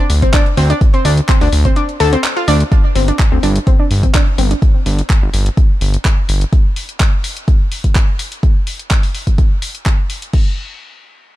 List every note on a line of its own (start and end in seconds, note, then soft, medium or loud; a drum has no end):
0.10 0.26 D2 medium
0.10 open hi-hat loud
0.22 0.33 C4 medium
0.22 0.33 C5 medium
0.22 kick medium
0.22 closed hi-hat medium
0.34 0.41 D4 medium
0.34 0.41 D5 medium
0.34 kick loud
0.34 clap loud
0.34 closed hi-hat medium
0.46 closed hi-hat soft
0.57 0.73 D2 loud
0.57 0.69 C4 medium
0.57 0.69 C5 medium
0.57 open hi-hat loud
0.70 0.77 D4 medium
0.70 0.77 D5 medium
0.70 closed hi-hat medium
0.81 kick loud
0.81 closed hi-hat medium
0.94 1.04 C4 medium
0.94 1.04 C5 medium
0.94 closed hi-hat soft
1.05 1.21 D2 loud
1.05 1.13 D4 medium
1.05 1.13 D5 medium
1.05 open hi-hat loud
1.17 closed hi-hat medium
1.29 1.41 C4 medium
1.29 1.41 C5 medium
1.29 kick loud
1.29 clap loud
1.29 closed hi-hat medium
1.41 1.49 D2 loud
1.41 1.48 D4 medium
1.41 1.48 D5 medium
1.41 open hi-hat medium
1.52 1.68 D2 loud
1.52 open hi-hat loud
1.65 1.76 C4 medium
1.65 1.76 C5 medium
1.65 kick medium
1.65 closed hi-hat medium
1.76 1.84 D4 medium
1.76 1.84 D5 medium
1.76 closed hi-hat medium
1.89 closed hi-hat soft
2.00 2.16 D2 medium
2.00 2.12 A4 loud
2.00 2.12 A5 medium
2.00 open hi-hat loud
2.13 2.20 C4 medium
2.13 2.20 C5 medium
2.13 closed hi-hat medium
2.24 clap loud
2.24 closed hi-hat medium
2.37 2.47 F4 medium
2.37 2.47 F5 medium
2.37 closed hi-hat soft
2.48 2.64 D2 medium
2.48 2.56 D4 loud
2.48 2.56 D5 medium
2.48 open hi-hat loud
2.60 closed hi-hat medium
2.72 2.79 D4 medium
2.72 kick loud
2.72 closed hi-hat medium
2.95 3.11 G1 medium
2.95 3.07 C4 medium
2.95 open hi-hat loud
3.08 3.15 D4 medium
3.08 closed hi-hat medium
3.19 kick loud
3.19 clap loud
3.19 closed hi-hat medium
3.32 3.39 D2 medium
3.32 3.42 C4 medium
3.43 3.59 G1 loud
3.43 3.51 D4 medium
3.43 open hi-hat loud
3.56 closed hi-hat medium
3.67 3.79 C4 medium
3.67 kick loud
3.67 closed hi-hat medium
3.79 3.86 D4 medium
3.91 4.07 G1 medium
3.91 open hi-hat loud
4.03 4.14 C4 medium
4.03 kick medium
4.03 closed hi-hat medium
4.14 4.22 D4 medium
4.14 kick loud
4.14 clap loud
4.14 closed hi-hat medium
4.38 4.54 G1 loud
4.38 4.50 C4 medium
4.38 open hi-hat loud
4.51 4.58 D4 medium
4.51 closed hi-hat medium
4.62 kick loud
4.62 closed hi-hat soft
4.86 5.02 G1 medium
4.86 open hi-hat loud
4.99 closed hi-hat medium
5.10 kick loud
5.10 clap loud
5.10 closed hi-hat medium
5.22 5.30 G1 medium
5.34 5.49 G1 loud
5.34 open hi-hat loud
5.46 closed hi-hat medium
5.57 kick loud
5.57 closed hi-hat medium
5.81 5.97 G1 medium
5.81 open hi-hat loud
5.94 closed hi-hat medium
6.05 kick loud
6.05 clap loud
6.05 closed hi-hat medium
6.29 6.45 G1 loud
6.29 open hi-hat loud
6.41 closed hi-hat medium
6.53 kick loud
6.53 closed hi-hat soft
6.76 open hi-hat loud
6.89 closed hi-hat medium
7.00 kick loud
7.00 clap loud
7.00 closed hi-hat medium
7.24 open hi-hat loud
7.37 closed hi-hat medium
7.48 kick loud
7.48 closed hi-hat soft
7.72 open hi-hat loud
7.84 kick medium
7.84 closed hi-hat medium
7.95 kick loud
7.95 clap loud
7.95 closed hi-hat medium
8.19 open hi-hat loud
8.32 closed hi-hat medium
8.43 kick loud
8.43 closed hi-hat soft
8.67 open hi-hat loud
8.79 closed hi-hat medium
8.91 kick loud
8.91 clap loud
8.91 closed hi-hat soft
9.03 open hi-hat medium
9.15 open hi-hat loud
9.27 kick medium
9.27 closed hi-hat medium
9.38 kick loud
9.38 closed hi-hat soft
9.62 open hi-hat loud
9.75 closed hi-hat medium
9.86 kick loud
9.86 clap loud
9.86 closed hi-hat soft
10.10 open hi-hat loud
10.22 closed hi-hat medium
10.33 kick loud
10.33 crash medium